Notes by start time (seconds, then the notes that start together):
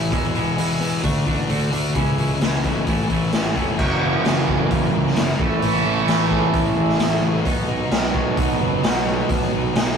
Already playing: A1 A2 E3 A3 C#4 E4
0.12 E1 E2 B2 E3 G#3 B3 E4, kick, open hi-hat
0.34 E2 B2 E3 G#3 B3 E4, open hi-hat
0.56 E1 E2 B2 E3 G#3 B3 E4, open hi-hat
0.80 E2 B2 E3 G#3 B3 E4, open hi-hat
1.03 D2 D3 A3 D4 F#4, kick, open hi-hat
1.26 A1 D3 A3 D4 F#4, kick, open hi-hat
1.49 D2 D3 A3 D4 F#4, open hi-hat
1.72 D2 D3 A3 D4 F#4, open hi-hat
1.94 C#2 C#3 E3 G#3 C#4 E4, kick, open hi-hat
2.17 C#3 E3 G#3 C#4 E4, open hi-hat
2.40 C#2 C#3 E3 G#3 C#4 E4, snare, open hi-hat
2.63 B1 C#3 E3 G#3 C#4 E4, kick, open hi-hat
2.86 A1 A2 E3 A3 C#4 E4, kick, open hi-hat
3.09 A1 A2 E3 A3 C#4 E4, kick, open hi-hat
3.31 A1 A2 E3 A3 C#4 E4, snare, open hi-hat
3.54 F1 A2 E3 A3 C#4 E4, kick, open hi-hat
3.78 F#1 F#2 C#3 E3 F#3 A#3 C#4 F#4, kick, crash
4.01 E4
4.24 F#1 C#4, snare, open hi-hat
4.47 F#1 A#4, kick
4.70 F#1 E4, kick, open hi-hat
4.93 C#2 A#4
5.06 snare
5.16 F#1 E4, snare, open hi-hat
5.38 A1 A2 E3 A3 C#4 E4, kick
5.62 A1 A3, open hi-hat
5.86 A1 E4
6.08 A1 A3, snare, open hi-hat
6.31 G#4, kick
6.54 A1 E4, kick, open hi-hat
6.76 A1 G#4
6.89 snare
6.99 A1 E4, snare, open hi-hat
7.22 A1 C#5
7.44 B1 B2 F#3 B3 D#4 F#4, kick, open hi-hat
7.68 D#4
7.91 B1 B3, snare, open hi-hat
8.14 B1 F#4, kick
8.37 B1 D#4, kick, open hi-hat
8.60 F#1 F#4
8.83 B1 D#4, snare, open hi-hat
9.06 C#5
9.29 B1 B3, kick, open hi-hat
9.52 B1 D#4
9.75 B1 B3, snare, open hi-hat